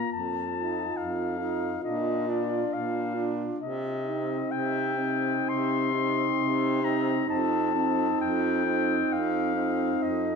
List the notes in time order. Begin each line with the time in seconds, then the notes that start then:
Already playing: A#3 A#5
0.10 F2 A5
0.54 D#4 F4
0.97 F2 F5
1.38 D#4 F4
1.82 A#2 D4 F4 D#5
2.28 D4 F4 D5
2.71 A#2 F5
3.15 D4 F4
3.59 C3 D#5
4.01 C4 D#4
4.49 C3 G5
4.96 C4 D#4
5.47 C3 C6
5.92 C4 D#4
6.37 C3
6.82 C4 D#4 A#5
7.26 F2 C4 D#4 A5
7.73 C4 D#4
8.20 F2 G5
8.65 C4 D#4
9.10 F2 F5
9.55 C4 D#4
10.01 F2 D#5